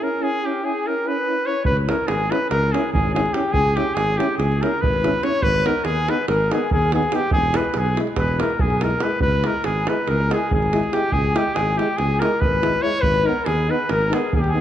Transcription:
0.00 C#4 E4 A#4
0.20 C#4 E4 G#4
0.43 C#4 E4 G4
0.63 C#4 E4 G#4
0.86 C#4 E4 A#4
1.04 C#4 E4 B4
1.28 C#4 E4
1.46 C#4 E4 C#5
1.65 C#2 B4, davul low
1.77 davul high
1.88 C#4 E4 A#4, davul high
2.08 G#1 G#4, davul high
2.31 C#4 E4 B4, davul high
2.50 C#2 A#4, davul high
2.63 davul high
2.72 C#4 E4 G#4, davul high
2.92 G#1 G#4, davul low
3.14 C#4 E4 G#4, davul high
3.26 davul high
3.33 C#4 E4 G4, davul high
3.52 C#2 G#4, davul low
3.65 davul high
3.76 C#4 E4 G4, davul high
3.94 G#1 G#4, davul high
4.17 C#4 E4 G4, davul high
4.38 C#2 G#4, davul high
4.52 davul high
4.62 C#4 E4 A#4, davul high
4.81 G#1 B4, davul low
4.93 davul high
5.04 C#4 E4, davul high
5.14 davul high
5.23 C#4 E4 C#5, davul high
5.42 G#1 B4, davul low
5.54 davul high
5.65 B3 D#4 A#4, davul high
5.85 D#2 G#4, davul high
6.08 B3 D#4 B4, davul high
6.28 G#1 A#4, davul high
6.51 B3 D#4 G#4, davul high
6.71 D#2 G#4, davul low
6.82 davul high
6.92 B3 D#4 G#4, davul high
7.03 davul high
7.12 B3 D#4 G4, davul high
7.31 E1 G#4, davul low
7.43 davul high
7.54 G#3 E4 B4, davul high
7.64 davul high
7.74 B1 G#4, davul high
7.78 G#4
7.86 davul high
7.97 G#3 E4, davul high
8.07 davul high
8.16 E1 B4, davul high, davul low
8.28 davul high
8.39 G#3 E4 A#4, davul high
8.50 davul high
8.59 B1 G#4, davul low
8.70 davul high
8.81 G#3 E4 A#4, davul high
8.91 davul high
9.00 G#3 E4 B4, davul high
9.11 davul high
9.20 C#2 B4, davul low
9.32 davul high
9.44 G#3 E4 A#4, davul high
9.63 G#1 G#4, davul high
9.86 G#3 E4 B4, davul high
10.07 C#2 A#4, davul high
10.20 davul high
10.30 G#3 E4 G#4, davul high
10.50 G#1 G#4, davul low
10.62 davul high
10.72 G#3 E4, davul high
10.83 davul high
10.92 G#3 E4 G4, davul high
11.11 C#2 G#4, davul low
11.24 davul high
11.35 G#3 E4 G4, davul high
11.54 G#1 G#4, davul high
11.77 G#3 E4 G4, davul high
11.97 C#2 G#4, davul high
12.10 davul high
12.20 G#3 E4 A#4, davul high
12.40 G#1 B4, davul low
12.62 G#3 E4, davul high
12.74 davul high
12.81 G#3 E4 C#5
13.01 G#1 B4, davul low
13.14 davul high
13.24 B3 D#4 A#4
13.46 D#2 G#4, davul high
13.68 B3 D#4 B4
13.89 G#1 A#4, davul high
14.02 davul high
14.10 B3 D#4 G#4, davul high
14.32 D#2 G#4, davul low
14.37 G4
14.44 davul high
14.49 G#4
14.54 B3 D#4

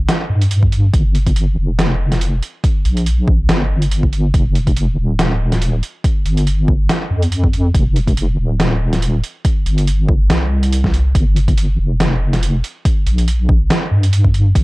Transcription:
0.09 snare, closed hi-hat
0.30 G2
0.42 closed hi-hat
0.51 closed hi-hat
0.63 kick
0.72 closed hi-hat
0.94 G1, kick, closed hi-hat
1.15 closed hi-hat
1.27 kick, closed hi-hat
1.36 closed hi-hat
1.57 F1
1.79 snare, closed hi-hat
2.12 snare, closed hi-hat
2.21 closed hi-hat
2.43 closed hi-hat
2.64 kick, closed hi-hat
2.85 A#1, closed hi-hat
2.97 closed hi-hat
3.06 closed hi-hat
3.28 kick
3.49 G1, snare, closed hi-hat
3.82 closed hi-hat
3.91 closed hi-hat
4.03 kick
4.13 closed hi-hat
4.34 F1, kick, closed hi-hat
4.55 closed hi-hat
4.67 kick, closed hi-hat
4.77 closed hi-hat
4.98 D#1
5.19 snare, closed hi-hat
5.52 snare, closed hi-hat
5.62 closed hi-hat
5.83 closed hi-hat
6.04 kick, closed hi-hat
6.25 G1, closed hi-hat
6.37 closed hi-hat
6.47 closed hi-hat
6.68 kick
6.89 snare, closed hi-hat
7.11 F2
7.22 closed hi-hat
7.32 closed hi-hat
7.44 kick
7.53 closed hi-hat
7.75 F1, kick, closed hi-hat
7.96 closed hi-hat
8.07 kick, closed hi-hat
8.17 closed hi-hat
8.38 D#1
8.60 snare, closed hi-hat
8.93 snare, closed hi-hat
9.02 closed hi-hat
9.24 closed hi-hat
9.45 kick, closed hi-hat
9.66 G1, closed hi-hat
9.78 closed hi-hat
9.87 closed hi-hat
10.09 kick
10.30 C2, snare, closed hi-hat
10.63 closed hi-hat
10.73 closed hi-hat
10.84 kick, snare
10.94 closed hi-hat
11.15 G1, kick, closed hi-hat
11.36 closed hi-hat
11.48 kick, closed hi-hat
11.58 closed hi-hat
11.79 F1
12.00 snare, closed hi-hat
12.33 snare, closed hi-hat
12.43 closed hi-hat
12.64 closed hi-hat
12.85 kick, closed hi-hat
13.06 A#1, closed hi-hat
13.18 closed hi-hat
13.28 closed hi-hat
13.49 kick
13.70 snare, closed hi-hat
13.91 G2
14.03 closed hi-hat
14.13 closed hi-hat
14.24 kick
14.34 closed hi-hat
14.55 G1, kick, closed hi-hat

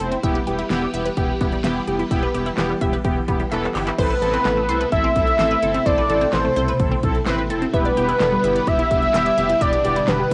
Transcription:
Already playing: B2 C3 A3 E4
0.00 F1 C4 E4 A4 C5, closed hi-hat
0.12 C4, closed hi-hat
0.23 E1 E3 G3 B3 E4 G4 E5, kick, closed hi-hat
0.35 B4
0.47 E1 B3 E4 G4, closed hi-hat
0.59 E4, closed hi-hat
0.70 E1 B3 E4 G4, snare, closed hi-hat
0.82 G3
0.94 E1 B3 E4 G4 E5, closed hi-hat
1.06 B4, closed hi-hat
1.17 E1 B3 E4 G4, kick, closed hi-hat
1.41 E1 B3 E4 G4, kick, closed hi-hat
1.52 G3, closed hi-hat
1.64 E1 B3 E4 G4 E5, snare, closed hi-hat
1.87 F1 B3 E4 G4, closed hi-hat
1.99 E4, closed hi-hat
2.11 E1 B3 E4 G4 E5, kick, closed hi-hat
2.23 B4
2.34 E1 B3 E4 G4, closed hi-hat
2.46 E4, closed hi-hat
2.58 E1 B3 E4 G4, snare, clap, closed hi-hat
2.70 G3
2.81 E1 B3 E4 G4 E5, kick, closed hi-hat
2.93 B4, closed hi-hat
3.05 E1 B3 E4 G4, kick, closed hi-hat
3.28 E1 B3 E4 G4, kick, closed hi-hat
3.40 G3, closed hi-hat
3.52 E1 B3 E4 A4 E5, clap, closed hi-hat
3.63 clap
3.75 G1 B3 E4 G4, clap, open hi-hat
3.87 E4, clap, closed hi-hat
3.99 A1 B2 C3 A3 C4 E4 A4 B4 C5, kick, closed hi-hat, crash
4.10 B4
4.22 A1 C4 E4 A4, closed hi-hat
4.34 C4, closed hi-hat
4.45 A1 B3 C4 E4 A4, snare, clap, closed hi-hat
4.57 A3
4.69 C2 C4 E4 A4 C5, closed hi-hat
4.81 B4, closed hi-hat
4.92 A1 C4 E4 A4 E5, kick, closed hi-hat
5.04 C4
5.16 B1 C4 E4 A4, kick, closed hi-hat
5.27 closed hi-hat
5.39 A1 C4 E4 A4 C5, snare, clap, closed hi-hat
5.51 B4
5.62 G1 C4 E4 A4, closed hi-hat
5.74 C4, closed hi-hat
5.86 A1 C4 E4 A4 C5 D5, kick, closed hi-hat
5.98 B4
6.09 A1 C4 E4 A4, closed hi-hat
6.21 C4, closed hi-hat
6.33 A1 B3 C4 E4 A4 C5, snare, clap, closed hi-hat
6.45 A3
6.56 C2 C4 E4 A4 C5, closed hi-hat
6.68 B4, closed hi-hat
6.79 A1 C4 E4 A4, kick, closed hi-hat
6.91 C4
7.03 B1 C4 E4 A4, kick, closed hi-hat
7.15 closed hi-hat
7.26 A1 C4 E4 B4 C5, snare, clap, closed hi-hat
7.38 B4
7.50 F1 C4 E4 A4, closed hi-hat
7.62 C4, closed hi-hat
7.73 E1 D3 G3 B3 E4 G4 B4 E5, kick, closed hi-hat
7.85 D5
7.97 E1 B3 E4 G4, closed hi-hat
8.09 E4, closed hi-hat
8.20 E1 B3 D4 E4 A4, snare, clap, closed hi-hat
8.32 G3
8.44 G1 B3 E4 G4 E5, closed hi-hat
8.56 D5, closed hi-hat
8.67 E1 B3 E4 G4 E5, kick, closed hi-hat
8.79 E4
8.91 F1 B3 E4 G4, kick, closed hi-hat
9.02 closed hi-hat
9.14 E1 B3 E4 G4 E5, snare, clap, closed hi-hat
9.26 D5
9.38 F1 B3 E4 G4, closed hi-hat
9.49 E4, closed hi-hat
9.61 E1 B3 E4 G4 D5 E5, kick, closed hi-hat
9.73 D5
9.84 E1 B3 E4 G4, closed hi-hat
9.96 E4, closed hi-hat
10.08 E1 B3 D4 E4 G4 B4, snare, clap, closed hi-hat
10.20 G3

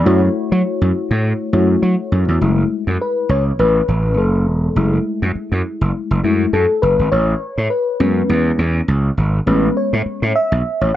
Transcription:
Already playing: D5 B5
0.05 F#2 A3 E4 F#4 C#5
0.52 F#3
0.81 F#2
1.11 A2
1.53 F#2 A3 E4 F#4 C#5
1.82 F#3
2.12 F#2
2.28 E2
2.41 F#1 G#3 A3 E4
2.87 F#2
3.01 B4
3.29 C#2 C#5
3.59 A1 B4
3.88 A1
4.18 F#1 A4
4.47 E1
4.76 F#1 G#3 A3 E4
5.22 F#2
5.35 muted slap bass stroke
5.52 F#2
5.81 F#1
6.11 F#1
6.23 F#2 G#3 A3 E4
6.53 F#2 A4
6.82 F#1 B4
6.99 G#1
7.12 A1 C#5
7.58 A2
7.70 B4
8.00 F#2 G#3 B3 C#4
8.29 E2
8.59 E2
8.88 C#2
9.17 G#1
9.46 A1 G#3 B3 C#4 B4
9.77 C#5
9.93 A2
10.06 muted slap bass stroke
10.22 A2
10.36 E5
10.52 B1
10.81 A1 C#5

